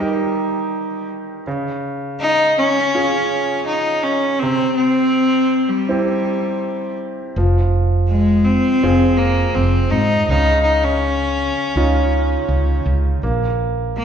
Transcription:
Already playing: D#3 G3
0.00 D#4 G4 A#4
1.47 C#3
2.20 D#4
2.58 C#4
2.94 C#4 F4 G#4
3.67 D#4
4.03 C#4
4.39 C3 C4
4.75 C4
5.69 G3
5.89 C4 E4 G4
7.36 F1 F3
8.09 G#3
8.44 C4
8.83 F1 C4 F4 G#4
9.18 A#3
9.54 F1 C4
9.90 G#2 D#4
10.28 C#2 C#3 D#4
10.63 D#4
10.84 C#4
11.75 C#2 C#4 D#4 F4
12.49 C#2
12.86 C#2
13.23 A#1 A#3
13.97 A#3

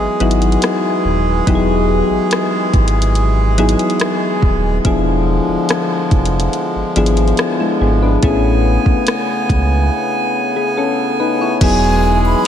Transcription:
Already playing: E3 F#3 G#3 B3 D#4 E4 G#4
0.20 G#1 F#3 B3 D#4 E4 F#4, closed hi-hat
0.31 closed hi-hat
0.42 closed hi-hat
0.52 closed hi-hat
0.62 cross-stick, closed hi-hat
1.05 D#1
1.47 E1 F#3 B3 D#4 E4 G4, kick, closed hi-hat
1.55 G#4
2.10 G#1
2.31 cross-stick, closed hi-hat
2.73 G#1, kick, closed hi-hat
2.88 closed hi-hat
3.02 closed hi-hat
3.15 closed hi-hat
3.58 F#3 B3 D#4 E4 G#4, closed hi-hat
3.69 closed hi-hat
3.79 closed hi-hat
3.90 closed hi-hat
4.00 cross-stick, closed hi-hat
4.42 D#1, kick
4.85 E1 D3 F3 B3 D4 E4 G#4, kick, closed hi-hat
5.49 F1
5.69 cross-stick, closed hi-hat
6.11 F1, kick, closed hi-hat
6.25 closed hi-hat
6.40 closed hi-hat
6.53 closed hi-hat
6.75 G#1
6.96 G#1 F3 B3 D4 E4 G#4, closed hi-hat
7.06 closed hi-hat
7.17 closed hi-hat
7.28 closed hi-hat
7.37 cross-stick, closed hi-hat
7.60 G#3 E4
7.81 G#1 B3 G#4
8.03 D4 B4
8.23 A1 C#3 A3 B3 C#4 E4 G#4 G#5, kick, closed hi-hat
8.86 C#2, kick
9.07 cross-stick, closed hi-hat
9.49 C#2, kick, closed hi-hat
10.56 B3 G#4
10.77 C#4 A4
11.20 D#4 B4
11.41 E4 C#5
11.61 E1 E3 F#3 G#3 B3 D#4 E4 G#4 G#5, kick, closed hi-hat, crash
12.26 B5

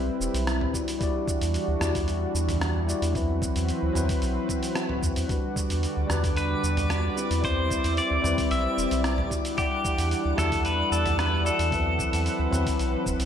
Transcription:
Already playing: B1 G3 C4 E4 B4
0.20 E1, shaker
0.34 B1, open hi-hat, shaker
0.47 cross-stick, open hi-hat, shaker
0.61 mid tom
0.73 E3 G3 D4 E4 F#4 D5, kick, shaker
0.88 open hi-hat, shaker
0.99 G3 E4 F#4, kick, open hi-hat, shaker
1.04 D5
1.28 kick, shaker
1.41 E2, open hi-hat, shaker
1.54 open hi-hat, shaker
1.68 D2
1.79 E2 G3 E4 F#4, cross-stick, mid tom, shaker
1.84 D5
1.95 kick, open hi-hat, shaker
2.08 open hi-hat, shaker
2.34 E2, shaker
2.49 mid tom, open hi-hat, shaker
2.61 cross-stick, open hi-hat, shaker
2.87 G3 E4 F#4 D5, shaker
3.02 E2, open hi-hat, shaker
3.13 F#3 C4 E4 F#4 B4, kick, open hi-hat, shaker
3.17 B4
3.42 kick, shaker
3.55 E2, open hi-hat, shaker
3.69 open hi-hat, shaker
3.83 D2
3.93 E2 F#3 C4 E4, mid tom, shaker
3.98 B4
4.09 kick, open hi-hat, shaker
4.22 B1, open hi-hat, shaker
4.49 kick, shaker
4.63 open hi-hat, shaker
4.75 cross-stick, open hi-hat, shaker
4.89 mid tom
5.03 E2, kick, shaker
5.16 E2, open hi-hat, shaker
5.27 D3 G3 D4 F#4 D5 D6, kick, open hi-hat, shaker
5.32 B4
5.56 kick, shaker
5.70 E2, open hi-hat, shaker
5.83 open hi-hat, shaker
5.97 D2
6.07 E2 G3 D4 F#4, cross-stick, mid tom, shaker
6.12 B4
6.24 kick, open hi-hat, shaker
6.37 B4, open hi-hat, shaker
6.63 E2, shaker
6.77 mid tom, open hi-hat, shaker
6.90 cross-stick, open hi-hat, shaker
7.16 G3 C4 E4 B4, shaker
7.31 E2, open hi-hat, shaker
7.41 G3 C4 E4 C5, kick, open hi-hat, shaker
7.46 C5
7.71 kick, shaker
7.84 E2, open hi-hat, shaker
7.97 D5, open hi-hat, shaker
8.11 D2
8.22 E2 G3 C4 E4, mid tom, shaker
8.26 B4
8.38 kick, open hi-hat, shaker
8.51 B1 E5, open hi-hat, shaker
8.78 E1, shaker
8.91 B1, open hi-hat, shaker
9.04 cross-stick, open hi-hat, shaker
9.18 mid tom
9.30 E3 G3 D4 E4 F#4 D5 F#5, kick, shaker
9.45 open hi-hat, shaker
9.55 G3 E4 G4 F#5, kick, open hi-hat, shaker
9.60 D5
9.85 kick, shaker
9.98 E2, open hi-hat, shaker
10.11 open hi-hat, shaker
10.25 D2
10.36 E2 G3 E4 F#4 A4, cross-stick, mid tom, shaker
10.40 D5
10.52 kick, open hi-hat, shaker
10.65 B4, open hi-hat, shaker
10.91 E2 A4, shaker
11.06 mid tom, open hi-hat, shaker
11.19 B4, cross-stick, open hi-hat, shaker
11.44 G3 E4 F#4 A4 D5, shaker
11.59 E2, open hi-hat, shaker
11.70 F#3 C4 E4 B4, kick, open hi-hat, shaker
11.75 B4
11.99 kick, shaker
12.13 E2, open hi-hat, shaker
12.26 open hi-hat, shaker
12.39 D2
12.51 E2 F#3 C4 E4, mid tom, shaker
12.55 B4
12.66 kick, open hi-hat, shaker
12.79 B1, open hi-hat, shaker
13.06 E1, kick, shaker
13.20 B1, open hi-hat, shaker

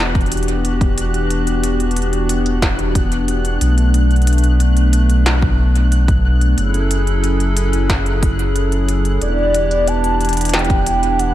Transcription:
Already playing: E1 E3 B3 D4 F#4 G4 F#6
0.15 kick, closed hi-hat
0.21 closed hi-hat
0.26 closed hi-hat
0.32 closed hi-hat
0.37 closed hi-hat
0.43 closed hi-hat
0.48 closed hi-hat
0.65 closed hi-hat
0.81 kick, closed hi-hat
0.98 closed hi-hat
1.14 closed hi-hat
1.30 closed hi-hat
1.47 closed hi-hat
1.64 closed hi-hat
1.80 closed hi-hat
1.91 closed hi-hat
1.96 closed hi-hat
2.02 closed hi-hat
2.13 closed hi-hat
2.29 closed hi-hat
2.46 closed hi-hat
2.62 kick, snare, closed hi-hat
2.79 closed hi-hat
2.95 kick, closed hi-hat
3.12 closed hi-hat
3.28 closed hi-hat
3.45 closed hi-hat
3.61 B1 A3, closed hi-hat
3.78 closed hi-hat
3.94 closed hi-hat
4.11 closed hi-hat
4.16 closed hi-hat
4.22 closed hi-hat
4.27 closed hi-hat
4.33 closed hi-hat
4.38 closed hi-hat
4.44 closed hi-hat
4.60 closed hi-hat
4.77 closed hi-hat
4.93 closed hi-hat
5.10 closed hi-hat
5.26 snare, closed hi-hat
5.42 kick
5.75 closed hi-hat
5.92 closed hi-hat
6.08 kick, closed hi-hat
6.41 closed hi-hat
6.58 F#1 F#3 C#4 E4 G#4 A4, closed hi-hat
6.74 closed hi-hat
6.91 closed hi-hat
7.07 closed hi-hat
7.24 closed hi-hat
7.40 closed hi-hat
7.57 closed hi-hat
7.73 closed hi-hat
7.90 kick, snare, closed hi-hat
8.06 closed hi-hat
8.23 kick, closed hi-hat
8.39 closed hi-hat
8.56 closed hi-hat
8.72 closed hi-hat
8.89 closed hi-hat
9.05 closed hi-hat
9.21 E1 E3 B3 D4 E4 G4 D5, closed hi-hat
9.55 closed hi-hat
9.71 closed hi-hat
9.88 A5, closed hi-hat
10.04 closed hi-hat
10.21 closed hi-hat
10.25 closed hi-hat
10.29 closed hi-hat
10.33 closed hi-hat
10.37 closed hi-hat
10.41 closed hi-hat
10.45 A5, closed hi-hat
10.48 closed hi-hat
10.54 G5, snare
10.59 closed hi-hat
10.65 closed hi-hat
10.70 kick, closed hi-hat
10.86 closed hi-hat
11.03 closed hi-hat
11.19 F#5, closed hi-hat

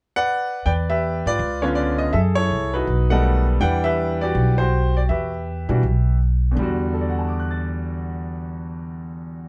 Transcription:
0.16 B4 D5 F#5
0.66 E2 B4 D5 G5
0.90 G4 B4 E5
1.26 G#2 F4 B4 D5
1.39 C#2
1.62 D3 B3 C#4 F4 C#5
1.75 D5
1.98 D#5
2.13 F#2 G#4 A4 E5
2.35 E4 A4 C#5
2.51 C2
2.74 D#4 F#4 B4
2.87 B1
3.10 D#3 G3 A3 B3 A4 D#5 F#5
3.60 E2 E3 G3 D4 B4 D5 F#5 G5
3.84 G4 B4 E5
4.21 F#4 G4 D5
4.35 B1
4.58 F#4 G4 C5
4.97 D5
5.09 E2 G4 B4 E5
5.69 B2 E3 G3 D4 F#4
5.83 B1
6.51 E2 D3
6.57 E2 G3
6.63 F#4
6.94 A4
7.01 D5
7.10 F#5
7.19 A5
7.29 D6
7.40 F#6
7.51 A6

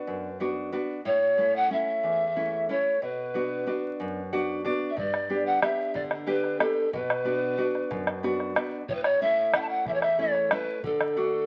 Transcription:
Already playing: B3 D4 F#4 B4
0.07 F#2
0.40 B3 D4 F#4
0.72 B3 D4 F#4
1.05 A2 C#5
1.38 A3 C#4 E4
1.56 F#5
1.70 A3 C#4 E4 E5
2.03 E2
2.36 A3 C#4 E4
2.69 A3 C#4 E4 C#5
3.02 B2 B4
3.34 B3 D4 F#4
3.66 B3 D4 F#4
4.00 F#2
4.33 B3 D4 F#4 F#5
4.64 B3 D4 F#4 D5
4.90 E5
4.96 G2 D5, bombo low
5.14 bombo rim
5.29 B3 D4 G4
5.46 F#5
5.62 B3 D4 G4 E5, bombo rim
5.79 bombo rim
5.94 D3 D5, bombo rim, bombo low
6.11 bombo rim
6.26 B3 D4 G4 B4, bombo rim
6.44 bombo rim
6.60 B3 D4 G4 A4, bombo rim
6.93 B2 B4, bombo low
7.10 bombo rim
7.25 B3 D4 F#4
7.58 B3 D4 F#4
7.75 bombo rim
7.91 F#2, bombo rim, bombo low
8.07 bombo rim
8.23 B3 D4 F#4, bombo rim
8.40 bombo rim
8.56 B3 D4 F#4, bombo rim
8.89 A2 C#5, bombo low
8.95 B4
9.04 C#5, bombo rim
9.21 A3 C#4 E4 E5
9.54 A3 C#4 E4 F#5, bombo rim
9.61 A5
9.69 F#5, bombo rim
9.86 E2 E5, bombo rim, bombo low
9.94 C#5
10.02 E5, bombo rim
10.19 A3 C#4 E4 C#5
10.35 bombo rim
10.51 A3 C#4 E4 B4, bombo rim
10.83 D3 A4, bombo low
11.01 bombo rim
11.17 A3 D4 F#4

